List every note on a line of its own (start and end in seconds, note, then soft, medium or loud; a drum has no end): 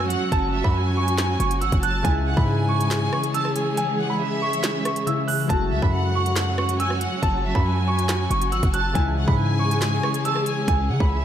0.00 0.17 F#2 loud
0.00 2.01 F#3 medium
0.00 2.04 G#3 medium
0.00 2.01 A3 medium
0.00 2.01 C#4 medium
0.00 2.01 F#4 medium
0.00 2.02 F#4 medium
0.00 downlifter medium
0.10 0.31 F#5 medium
0.10 closed hi-hat medium
0.32 0.63 F#1 loud
0.32 0.62 A5 loud
0.32 kick loud
0.32 closed hi-hat medium
0.53 0.74 E5 medium
0.64 1.37 F#2 loud
0.64 0.95 B5 medium
0.64 kick loud
0.75 1.58 G#5 medium
0.97 1.37 C#6 medium
1.08 closed hi-hat medium
1.18 snare loud
1.18 clap medium
1.18 closed hi-hat medium
1.40 1.63 F#1 loud
1.40 1.59 C#6 medium
1.40 closed hi-hat medium
1.51 closed hi-hat medium
1.61 1.72 G#1 loud
1.61 1.82 F#5 medium
1.61 1.80 E6 medium
1.61 closed hi-hat medium
1.72 2.03 F#1 loud
1.72 kick medium
1.72 closed hi-hat medium
1.83 2.04 A5 medium
1.83 2.02 F#6 medium
1.83 closed hi-hat medium
2.03 2.36 C#2 loud
2.03 5.05 C#3 medium
2.03 5.47 E3 medium
2.03 5.47 G#3 medium
2.03 5.06 G#3 medium
2.03 5.47 C#4 medium
2.03 5.47 G#4 medium
2.03 2.35 G#5 loud
2.03 kick loud
2.03 closed hi-hat medium
2.08 5.04 E4 medium
2.26 2.47 F#5 medium
2.37 3.10 G#2 loud
2.37 2.67 B5 medium
2.37 kick loud
2.48 3.30 G#5 loud
2.69 3.10 C#6 medium
2.81 closed hi-hat medium
2.91 snare loud
2.91 clap medium
2.91 closed hi-hat medium
3.13 3.32 C#6 medium
3.13 cross-stick loud
3.23 closed hi-hat medium
3.34 3.55 A5 medium
3.34 3.53 E6 medium
3.34 closed hi-hat medium
3.45 cross-stick medium
3.56 3.76 G#5 medium
3.56 closed hi-hat medium
3.77 4.08 G#5 loud
3.77 closed hi-hat medium
3.99 4.19 F#5 medium
4.10 4.40 B5 medium
4.20 5.03 E5 medium
4.42 4.83 C#6 medium
4.53 closed hi-hat medium
4.64 snare loud
4.64 clap medium
4.64 closed hi-hat loud
4.85 5.04 C#6 medium
4.85 cross-stick loud
4.85 closed hi-hat medium
4.96 closed hi-hat medium
5.06 5.55 C#3 soft
5.06 5.46 G#3 soft
5.06 5.51 E4 medium
5.06 5.26 E6 medium
5.06 closed hi-hat medium
5.28 5.47 F#6 medium
5.28 open hi-hat medium
5.47 5.73 F#1 loud
5.47 8.92 F#3 medium
5.47 8.95 G#3 medium
5.47 8.91 A3 medium
5.47 8.92 C#4 medium
5.47 8.92 F#4 medium
5.47 5.80 A5 loud
5.47 kick loud
5.47 closed hi-hat medium
5.53 8.93 F#4 medium
5.72 5.82 C#2 loud
5.72 5.92 E5 medium
5.82 7.08 F#2 loud
5.82 6.13 B5 medium
5.82 kick loud
5.93 6.75 F#5 medium
6.15 6.56 C#6 medium
6.26 closed hi-hat medium
6.36 snare loud
6.36 clap medium
6.36 closed hi-hat medium
6.58 6.77 C#6 medium
6.58 cross-stick loud
6.69 closed hi-hat medium
6.80 7.00 G#5 medium
6.80 6.99 E6 medium
6.80 closed hi-hat medium
6.90 cross-stick medium
7.01 7.22 F#5 medium
7.01 closed hi-hat medium
7.23 7.54 F#1 loud
7.23 7.53 A5 loud
7.23 kick loud
7.23 closed hi-hat medium
7.44 7.65 E5 medium
7.55 8.28 F#2 loud
7.55 7.85 B5 medium
7.55 kick loud
7.66 8.48 G#5 medium
7.88 8.28 C#6 medium
7.99 closed hi-hat medium
8.09 snare loud
8.09 clap medium
8.09 closed hi-hat medium
8.30 8.54 F#1 loud
8.30 8.49 C#6 medium
8.30 closed hi-hat medium
8.42 closed hi-hat medium
8.52 8.62 G#1 loud
8.52 8.73 F#5 medium
8.52 8.71 E6 medium
8.52 closed hi-hat medium
8.63 8.94 F#1 loud
8.63 kick medium
8.63 closed hi-hat medium
8.74 8.94 A5 medium
8.74 8.93 F#6 medium
8.74 closed hi-hat medium
8.93 9.26 C#2 loud
8.93 11.25 C#3 medium
8.93 11.25 E3 medium
8.93 11.25 G#3 medium
8.93 11.25 C#4 medium
8.93 11.25 G#4 medium
8.93 9.26 G#5 loud
8.93 kick loud
8.93 closed hi-hat medium
8.98 11.25 E4 medium
9.17 9.37 F#5 medium
9.28 10.00 G#2 loud
9.28 9.58 B5 medium
9.28 kick loud
9.39 10.21 G#5 loud
9.59 10.00 C#6 medium
9.71 closed hi-hat medium
9.82 snare loud
9.82 clap medium
9.82 closed hi-hat medium
10.03 10.22 C#6 medium
10.03 cross-stick loud
10.14 closed hi-hat medium
10.25 10.45 A5 medium
10.25 10.44 E6 medium
10.25 closed hi-hat medium
10.36 cross-stick medium
10.46 10.67 G#5 medium
10.46 closed hi-hat medium
10.68 10.91 C#2 loud
10.68 10.98 G#5 loud
10.68 kick loud
10.68 closed hi-hat medium
10.89 11.00 C#3 loud
10.89 11.10 F#5 medium
11.00 11.25 C#2 loud
11.00 11.25 B5 medium
11.00 kick loud
11.11 11.25 E5 medium